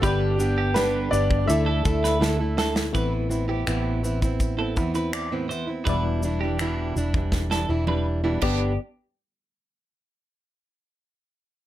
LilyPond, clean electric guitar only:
\new Staff \with { instrumentName = "Clean electric guitar" } { \time 4/4 \key a \dorian \tempo 4 = 82 b'16 r8 g'8. r8. a'16 r16 b'16 r8 a'16 r16 | b'16 r8 g'8. r8. a'16 r16 b'16 d''16 r16 c''16 r16 | b'16 r8 g'8. r8. a'16 r16 b'16 r8 g'8 | r1 | }